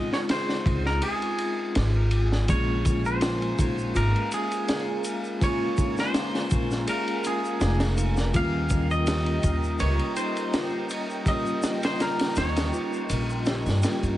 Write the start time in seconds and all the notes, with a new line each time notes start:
Already playing: G#3 C4 D#4 F4 G#4 D#5
0.13 C#5, snare
0.29 G#4 C5, snare, ride
0.49 snare
0.66 C#2, kick, ride
0.86 A#4, snare
1.02 F4 G#4, ride
1.22 ride
1.38 ride
1.75 G#1 F4, snare, ride
2.11 ride
2.32 snare
2.47 A#1 G#3 A#3 C#4 G#4 A#4 C#5 F5 G#5 A#5, kick, ride, shaker
2.52 F4
2.85 kick, ride, shaker
3.05 C5, shaker
3.21 F4, snare, ride, shaker
3.42 ride
3.58 A#1 D#4, kick, ride, shaker
3.78 shaker
3.95 G#1 F4 A#4, ride, shaker
4.16 ride
4.32 G#4, ride, shaker
4.52 ride, shaker
4.68 G#4, snare, ride, shaker
5.04 ride, shaker
5.24 shaker
5.39 G#3 A#3 C#4 F4, kick, ride, shaker
5.44 F4 C#5
5.77 D#4, kick, ride, shaker
5.97 C5, snare, shaker
6.14 F4, snare, ride, shaker
6.35 snare, triangle
6.51 A#1, kick, ride, shaker
6.71 snare, shaker
6.87 G#4 A#4, ride, shaker
7.08 ride
7.24 G#4, ride, shaker
7.45 shaker
7.60 F1 F4, snare, ride, shaker
7.80 snare, ride, triangle
7.97 D#4, ride, shaker
8.17 snare, shaker
8.31 D#2 G3 A#3 F4 D#5 G5, kick, ride, shaker
8.35 C#4 F4 F5
8.70 kick, ride, shaker
8.91 D#5, shaker
9.07 G4, snare, ride, shaker
9.26 ride
9.43 D#2, kick, ride, shaker
9.64 shaker
9.79 C#2 F4 C#5, ride, shaker
9.99 ride
10.16 D#4 C5, ride, shaker
10.37 ride, shaker
10.53 F4, snare, ride, shaker
10.90 ride, shaker
11.10 shaker
11.24 G3 A#3 G4, kick, ride, shaker
11.28 C#4 F4 D#5
11.46 shaker
11.63 snare, ride, shaker
11.83 C5, snare, ride, shaker
12.00 F4 A#4, snare, ride, shaker
12.19 snare, ride, triangle
12.36 D#2 D#4 C#5, snare, ride, shaker
12.56 snare, ride, shaker
12.73 F4, shaker
12.93 shaker
13.09 A#1, ride, triangle, shaker
13.29 C5, shaker
13.45 G4, snare, ride, shaker
13.66 G2, snare, triangle, shaker
13.82 G3 A#3 C#4 F4, snare, ride, shaker
14.03 G2, ride, shaker